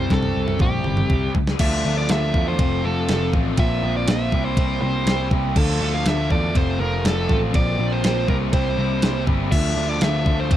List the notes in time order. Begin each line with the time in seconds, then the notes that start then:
Already playing: C3 G3 C4 E4 G4 C5
0.10 C2 A4, kick, snare
0.23 floor tom
0.36 C2
0.48 floor tom
0.59 A#1 G4, kick, floor tom, mid tom
0.84 G1, floor tom
0.97 floor tom, mid tom
1.09 C2 G3 C4 E4, kick
1.13 G4
1.35 C#2, kick
1.47 snare
1.59 D2 D3 F3 A3 D4 F4 E5, kick, crash, ride bell
1.85 D2 D3 F3 A3 D4 F4
1.98 D5
2.09 D2 D3 F3 A3 D4 F4 E5, snare, ride bell
2.34 E2 D3 F3 A3 D4 F4, kick
2.48 C5
2.59 F1 F2 C3 F3 A3 C4 F4, kick, ride bell
2.84 F1 F2 C3 F3 A3 C4 F4 A4
3.09 F1 F2 C3 F3 A3 C4 F4, snare, ride bell
3.33 A1 F2 C3 F3 A3 C4 F4, kick
3.57 A#1 A#2 F3 A#3 C4 F4 E5, kick, ride bell
3.83 A#1 A#2 F3 A#3 C4 F4
3.97 D5
4.08 A#1 A#2 F3 A#3 C4 F4 E5, snare, ride bell
4.31 C2 C3 E3 G3 A#3 C4 E4 G4, kick
4.45 C5
4.56 C2 C3 E3 G3 A#3 C4 E4 G4, kick, ride bell
4.81 C2 C3 E3 G3 A#3 C4 E4 G4 C5
5.06 C2 C3 E3 G3 A#3 C4 E4 G4, snare, ride bell
5.31 C2 C3 E3 G3 A#3 C4 E4 G4, kick
5.56 D2 D3 F3 A3 D4 F4 A4, kick, crash
5.81 D2 D3 F3 A3 D4 F4
5.94 F5
6.06 D2 D3 F3 A3 D4 F4 E5, snare, ride bell
6.30 E2 D3 F3 A3 D4 F4 D5, kick
6.54 F1 F2 C3 F3 A3 C4 F4 C5, kick, ride bell
6.80 F1 F2 C3 F3 A3 C4 F4 A#4
7.04 F1 F2 C3 F3 A3 C4 F4 A4, snare, ride bell
7.29 A1 F2 C3 F3 A3 C4 F4, kick, snare
7.54 A#1 A#2 F3 A#3 C4 F4 D5, kick, ride bell
7.78 A#1 A#2 F3 A#3 C4 F4
7.92 C5
8.03 A#1 A#2 F3 A#3 C4 F4, snare, ride bell
8.27 C2 C3 E3 G3 A#3 C4 E4 G4 A#4, kick
8.52 C2 C3 E3 G3 A#3 C4 E4 G4 C5, kick, ride bell
8.77 C2 C3 E3 G3 A#3 C4 E4 G4
9.02 C2 C3 E3 G3 A#3 C4 E4 G4, snare, ride bell
9.26 G1 C3 E3 G3 A#3 C4 E4 G4, kick
9.51 D2 D3 F3 A3 D4 F4 E5, kick, crash
9.76 D2 D3 F3 A3 D4 F4
9.90 D5
10.00 D2 D3 F3 A3 D4 F4 E5, snare, ride bell
10.25 D2 D3 F3 A3 D4 F4, kick
10.40 C5
10.50 F1 F2 C3 F3 A3 C4 F4, kick, ride bell